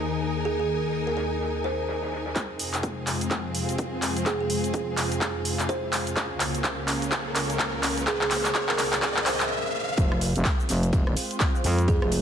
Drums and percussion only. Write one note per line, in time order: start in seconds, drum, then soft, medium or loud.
0.22 ride medium
0.45 ride medium
0.60 ride soft
0.69 ride medium
0.92 ride medium
1.07 snare soft
1.17 snare loud
1.17 ride medium
1.41 snare soft
1.41 ride medium
1.64 snare medium
1.64 ride medium
1.88 snare loud
1.88 ride medium
2.03 snare loud
2.03 ride medium
2.12 snare loud
2.12 ride medium
2.26 snare loud
2.26 ride medium
2.36 kick loud
2.36 clap soft
2.36 closed hi-hat medium
2.36 cabasa soft
2.59 open hi-hat loud
2.59 cabasa medium
2.74 clap soft
2.74 closed hi-hat medium
2.74 cabasa soft
2.83 kick loud
2.83 closed hi-hat medium
2.83 cabasa soft
3.07 clap soft
3.07 open hi-hat loud
3.07 cabasa medium
3.21 closed hi-hat medium
3.21 cabasa soft
3.31 kick loud
3.31 clap soft
3.31 closed hi-hat medium
3.31 cabasa soft
3.55 open hi-hat loud
3.55 cabasa medium
3.69 closed hi-hat medium
3.69 cabasa soft
3.78 kick loud
3.78 closed hi-hat medium
3.78 cabasa soft
4.02 clap medium
4.02 open hi-hat loud
4.02 cabasa medium
4.16 closed hi-hat medium
4.16 cabasa soft
4.26 kick loud
4.26 clap medium
4.26 closed hi-hat medium
4.26 cabasa soft
4.50 open hi-hat loud
4.50 cabasa medium
4.64 closed hi-hat medium
4.64 cabasa soft
4.74 kick loud
4.74 closed hi-hat medium
4.74 cabasa soft
4.97 clap medium
4.97 open hi-hat loud
4.97 cabasa medium
5.12 closed hi-hat medium
5.12 cabasa soft
5.21 kick loud
5.21 clap medium
5.21 closed hi-hat medium
5.21 cabasa soft
5.45 open hi-hat loud
5.45 cabasa medium
5.59 clap medium
5.59 closed hi-hat medium
5.59 cabasa soft
5.69 kick loud
5.69 closed hi-hat medium
5.69 cabasa soft
5.93 clap medium
5.93 open hi-hat loud
5.93 cabasa medium
6.07 closed hi-hat medium
6.07 cabasa soft
6.17 kick loud
6.17 clap medium
6.17 closed hi-hat soft
6.17 cabasa soft
6.40 clap medium
6.40 open hi-hat loud
6.40 cabasa medium
6.55 closed hi-hat medium
6.55 cabasa soft
6.64 kick loud
6.64 clap medium
6.64 closed hi-hat medium
6.64 cabasa soft
6.88 clap medium
6.88 open hi-hat loud
6.88 cabasa medium
7.02 closed hi-hat medium
7.02 cabasa soft
7.12 kick loud
7.12 clap medium
7.12 closed hi-hat soft
7.12 cabasa soft
7.36 clap medium
7.36 open hi-hat loud
7.36 cabasa medium
7.50 closed hi-hat medium
7.50 cabasa soft
7.59 kick loud
7.59 clap medium
7.59 closed hi-hat soft
7.59 cabasa soft
7.83 clap medium
7.83 open hi-hat loud
7.83 cabasa medium
7.97 closed hi-hat medium
7.97 cabasa soft
8.07 kick loud
8.07 clap medium
8.07 closed hi-hat soft
8.07 cabasa soft
8.21 clap medium
8.31 clap loud
8.31 open hi-hat loud
8.31 cabasa medium
8.45 clap medium
8.45 closed hi-hat medium
8.45 cabasa soft
8.55 kick loud
8.55 clap loud
8.55 closed hi-hat medium
8.55 cabasa soft
8.69 clap medium
8.78 clap medium
8.78 open hi-hat loud
8.78 cabasa medium
8.93 clap medium
8.93 closed hi-hat medium
8.93 cabasa soft
9.02 kick loud
9.02 clap loud
9.02 closed hi-hat soft
9.02 cabasa soft
9.16 clap medium
9.26 clap loud
9.26 open hi-hat loud
9.26 cabasa medium
9.40 clap medium
9.40 closed hi-hat medium
9.40 cabasa soft
9.97 kick loud
9.97 closed hi-hat medium
9.97 ride medium
9.97 cabasa soft
10.12 cross-stick medium
10.21 open hi-hat loud
10.21 ride medium
10.21 cabasa medium
10.36 closed hi-hat medium
10.36 cabasa soft
10.45 kick loud
10.45 snare loud
10.45 clap loud
10.45 closed hi-hat medium
10.45 ride medium
10.45 cabasa soft
10.60 cabasa soft
10.69 snare medium
10.69 open hi-hat loud
10.69 ride medium
10.69 cabasa medium
10.83 closed hi-hat medium
10.83 cabasa soft
10.93 kick loud
10.93 closed hi-hat medium
10.93 ride medium
10.93 cabasa soft
11.07 cross-stick medium
11.17 open hi-hat loud
11.17 ride medium
11.17 cabasa medium
11.31 closed hi-hat medium
11.31 cabasa soft
11.40 kick loud
11.40 snare loud
11.40 clap loud
11.40 closed hi-hat medium
11.40 ride medium
11.40 cabasa soft
11.55 cabasa soft
11.64 open hi-hat loud
11.64 ride medium
11.64 cabasa medium
11.78 closed hi-hat medium
11.78 cabasa soft
11.88 kick loud
11.88 closed hi-hat medium
11.88 ride medium
11.88 cabasa soft
12.02 cross-stick medium
12.02 ride soft
12.12 open hi-hat loud
12.12 ride medium
12.12 cabasa medium